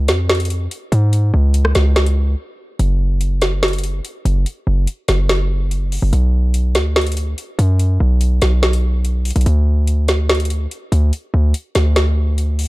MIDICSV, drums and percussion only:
0, 0, Header, 1, 2, 480
1, 0, Start_track
1, 0, Tempo, 416667
1, 1299, Time_signature, 4, 2, 24, 8
1, 14607, End_track
2, 0, Start_track
2, 0, Title_t, "Drums"
2, 95, Note_on_c, 9, 42, 77
2, 99, Note_on_c, 9, 38, 107
2, 210, Note_off_c, 9, 42, 0
2, 214, Note_off_c, 9, 38, 0
2, 340, Note_on_c, 9, 38, 127
2, 340, Note_on_c, 9, 42, 43
2, 400, Note_off_c, 9, 42, 0
2, 400, Note_on_c, 9, 42, 55
2, 455, Note_off_c, 9, 38, 0
2, 460, Note_off_c, 9, 42, 0
2, 460, Note_on_c, 9, 42, 65
2, 520, Note_off_c, 9, 42, 0
2, 520, Note_on_c, 9, 42, 74
2, 579, Note_off_c, 9, 42, 0
2, 579, Note_on_c, 9, 42, 76
2, 694, Note_off_c, 9, 42, 0
2, 821, Note_on_c, 9, 42, 74
2, 936, Note_off_c, 9, 42, 0
2, 1062, Note_on_c, 9, 42, 75
2, 1178, Note_off_c, 9, 42, 0
2, 1300, Note_on_c, 9, 42, 74
2, 1415, Note_off_c, 9, 42, 0
2, 1775, Note_on_c, 9, 42, 90
2, 1890, Note_off_c, 9, 42, 0
2, 1899, Note_on_c, 9, 37, 100
2, 2014, Note_off_c, 9, 37, 0
2, 2015, Note_on_c, 9, 42, 78
2, 2019, Note_on_c, 9, 38, 106
2, 2130, Note_off_c, 9, 42, 0
2, 2134, Note_off_c, 9, 38, 0
2, 2259, Note_on_c, 9, 38, 122
2, 2259, Note_on_c, 9, 42, 46
2, 2374, Note_off_c, 9, 38, 0
2, 2374, Note_off_c, 9, 42, 0
2, 2379, Note_on_c, 9, 42, 73
2, 2494, Note_off_c, 9, 42, 0
2, 3219, Note_on_c, 9, 42, 70
2, 3334, Note_off_c, 9, 42, 0
2, 3694, Note_on_c, 9, 42, 86
2, 3810, Note_off_c, 9, 42, 0
2, 3934, Note_on_c, 9, 42, 74
2, 3939, Note_on_c, 9, 38, 105
2, 4049, Note_off_c, 9, 42, 0
2, 4054, Note_off_c, 9, 38, 0
2, 4179, Note_on_c, 9, 38, 122
2, 4179, Note_on_c, 9, 42, 44
2, 4240, Note_off_c, 9, 42, 0
2, 4240, Note_on_c, 9, 42, 53
2, 4294, Note_off_c, 9, 38, 0
2, 4300, Note_off_c, 9, 42, 0
2, 4300, Note_on_c, 9, 42, 61
2, 4359, Note_off_c, 9, 42, 0
2, 4359, Note_on_c, 9, 42, 73
2, 4418, Note_off_c, 9, 42, 0
2, 4418, Note_on_c, 9, 42, 77
2, 4534, Note_off_c, 9, 42, 0
2, 4661, Note_on_c, 9, 42, 69
2, 4776, Note_off_c, 9, 42, 0
2, 4902, Note_on_c, 9, 42, 73
2, 5017, Note_off_c, 9, 42, 0
2, 5140, Note_on_c, 9, 42, 71
2, 5255, Note_off_c, 9, 42, 0
2, 5615, Note_on_c, 9, 42, 86
2, 5730, Note_off_c, 9, 42, 0
2, 5854, Note_on_c, 9, 42, 76
2, 5859, Note_on_c, 9, 38, 104
2, 5970, Note_off_c, 9, 42, 0
2, 5974, Note_off_c, 9, 38, 0
2, 6099, Note_on_c, 9, 38, 122
2, 6099, Note_on_c, 9, 42, 72
2, 6214, Note_off_c, 9, 38, 0
2, 6214, Note_off_c, 9, 42, 0
2, 6580, Note_on_c, 9, 42, 70
2, 6696, Note_off_c, 9, 42, 0
2, 6822, Note_on_c, 9, 46, 79
2, 6937, Note_off_c, 9, 46, 0
2, 7059, Note_on_c, 9, 42, 71
2, 7174, Note_off_c, 9, 42, 0
2, 7534, Note_on_c, 9, 42, 90
2, 7649, Note_off_c, 9, 42, 0
2, 7774, Note_on_c, 9, 42, 72
2, 7779, Note_on_c, 9, 38, 102
2, 7889, Note_off_c, 9, 42, 0
2, 7894, Note_off_c, 9, 38, 0
2, 8019, Note_on_c, 9, 38, 123
2, 8019, Note_on_c, 9, 42, 42
2, 8079, Note_off_c, 9, 42, 0
2, 8079, Note_on_c, 9, 42, 53
2, 8134, Note_off_c, 9, 38, 0
2, 8139, Note_off_c, 9, 42, 0
2, 8139, Note_on_c, 9, 42, 64
2, 8199, Note_off_c, 9, 42, 0
2, 8199, Note_on_c, 9, 42, 75
2, 8258, Note_off_c, 9, 42, 0
2, 8258, Note_on_c, 9, 42, 77
2, 8373, Note_off_c, 9, 42, 0
2, 8501, Note_on_c, 9, 42, 73
2, 8616, Note_off_c, 9, 42, 0
2, 8742, Note_on_c, 9, 42, 77
2, 8857, Note_off_c, 9, 42, 0
2, 8979, Note_on_c, 9, 42, 70
2, 9094, Note_off_c, 9, 42, 0
2, 9455, Note_on_c, 9, 42, 88
2, 9570, Note_off_c, 9, 42, 0
2, 9695, Note_on_c, 9, 42, 78
2, 9699, Note_on_c, 9, 38, 103
2, 9810, Note_off_c, 9, 42, 0
2, 9814, Note_off_c, 9, 38, 0
2, 9939, Note_on_c, 9, 38, 122
2, 9939, Note_on_c, 9, 42, 44
2, 10054, Note_off_c, 9, 38, 0
2, 10054, Note_off_c, 9, 42, 0
2, 10060, Note_on_c, 9, 42, 75
2, 10175, Note_off_c, 9, 42, 0
2, 10421, Note_on_c, 9, 42, 70
2, 10536, Note_off_c, 9, 42, 0
2, 10659, Note_on_c, 9, 42, 62
2, 10662, Note_on_c, 9, 46, 79
2, 10719, Note_off_c, 9, 42, 0
2, 10719, Note_on_c, 9, 42, 62
2, 10777, Note_off_c, 9, 46, 0
2, 10779, Note_off_c, 9, 42, 0
2, 10779, Note_on_c, 9, 42, 66
2, 10839, Note_off_c, 9, 42, 0
2, 10839, Note_on_c, 9, 42, 65
2, 10899, Note_off_c, 9, 42, 0
2, 10899, Note_on_c, 9, 42, 71
2, 11015, Note_off_c, 9, 42, 0
2, 11375, Note_on_c, 9, 42, 86
2, 11490, Note_off_c, 9, 42, 0
2, 11615, Note_on_c, 9, 42, 73
2, 11620, Note_on_c, 9, 38, 100
2, 11730, Note_off_c, 9, 42, 0
2, 11735, Note_off_c, 9, 38, 0
2, 11860, Note_on_c, 9, 38, 123
2, 11860, Note_on_c, 9, 42, 42
2, 11920, Note_off_c, 9, 42, 0
2, 11920, Note_on_c, 9, 42, 51
2, 11975, Note_off_c, 9, 38, 0
2, 11980, Note_off_c, 9, 42, 0
2, 11980, Note_on_c, 9, 42, 61
2, 12040, Note_off_c, 9, 42, 0
2, 12040, Note_on_c, 9, 42, 72
2, 12099, Note_off_c, 9, 42, 0
2, 12099, Note_on_c, 9, 42, 74
2, 12214, Note_off_c, 9, 42, 0
2, 12342, Note_on_c, 9, 42, 71
2, 12457, Note_off_c, 9, 42, 0
2, 12582, Note_on_c, 9, 42, 75
2, 12698, Note_off_c, 9, 42, 0
2, 12820, Note_on_c, 9, 42, 72
2, 12935, Note_off_c, 9, 42, 0
2, 13296, Note_on_c, 9, 42, 86
2, 13411, Note_off_c, 9, 42, 0
2, 13536, Note_on_c, 9, 42, 73
2, 13540, Note_on_c, 9, 38, 104
2, 13651, Note_off_c, 9, 42, 0
2, 13655, Note_off_c, 9, 38, 0
2, 13780, Note_on_c, 9, 38, 122
2, 13780, Note_on_c, 9, 42, 69
2, 13895, Note_off_c, 9, 38, 0
2, 13895, Note_off_c, 9, 42, 0
2, 14261, Note_on_c, 9, 42, 69
2, 14376, Note_off_c, 9, 42, 0
2, 14502, Note_on_c, 9, 46, 82
2, 14607, Note_off_c, 9, 46, 0
2, 14607, End_track
0, 0, End_of_file